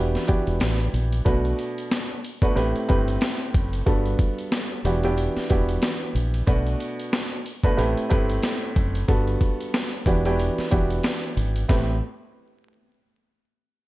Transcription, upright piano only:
Already playing: E3 B3 D4 F#4 G4
0.27 E3 B3 D4 F#4 G4
1.25 B2 A3 D4 F#4 B4
2.42 B2 A3 D4 F#4 B4
2.55 A2 A3 C4 G4 B4
2.88 A2 A3 C4 G4 B4
3.86 G2 G3 B3 F#4 A4
4.85 E3 B3 D4 F#4 G4
5.04 E3 B3 D4 F#4 G4
5.50 E3 B3 D4 F#4 G4
6.47 B2 A3 D4 F#4 B4
7.64 B2 A3 D4 F#4 B4
7.77 A2 A3 C4 G4 B4
8.10 A2 A3 C4 G4 B4
9.08 G2 G3 B3 F#4 A4
10.06 E3 B3 D4 F#4 G4
10.26 E3 B3 D4 F#4 G4
10.71 E3 B3 D4 F#4 G4
11.69 A2 A3 C4 G4 B4

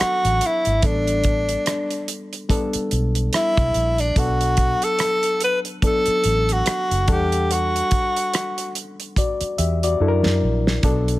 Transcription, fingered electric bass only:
0.01 muted fingered electric bass stroke
0.25 A1
0.66 G#1
0.83 A1
2.75 muted fingered electric bass stroke
2.92 B1
3.58 B1
3.75 A#1
4.16 B1
6.07 muted fingered electric bass stroke
6.25 A1
6.67 muted fingered electric bass stroke
6.91 F#1
7.09 E2
9.41 muted fingered electric bass stroke
9.59 E2
10.00 F#2
10.25 F#2
10.43 A#1
10.84 B1

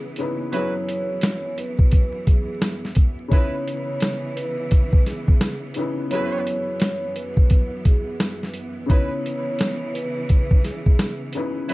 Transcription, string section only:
Already playing: C#3 E3 B3
0.53 F#2 E3
3.31 C#3 E3 B3
6.09 F#2 E3
8.89 C#3 E3
11.69 F#2 E3

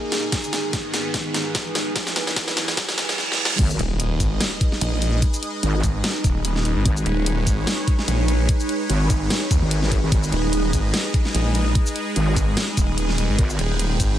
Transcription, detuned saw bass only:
3.79 D#1
4.20 G#1
4.81 A#1
5.83 G#1
6.24 D#1
6.65 D#1
6.76 G#1
7.06 D#1
7.47 G#1
8.08 A#1
9.10 G#1
9.51 D#2
10.32 D#1
10.73 G#1
11.34 A#1
12.36 G#1
12.77 D#1
13.18 D#1
13.29 G#1
13.59 D#1
14.00 G#1

